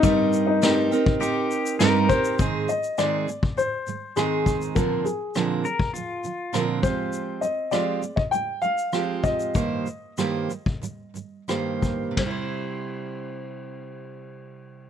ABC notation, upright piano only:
X:1
M:4/4
L:1/16
Q:1/4=101
K:Cm
V:1 name="Upright piano"
E3 E6 z4 z c2- | c2 e2 d4 c4 A4 | B2 A8 z4 c2- | c2 e2 d3 e g2 f4 e2- |
e12- e2 z2 | c16 |]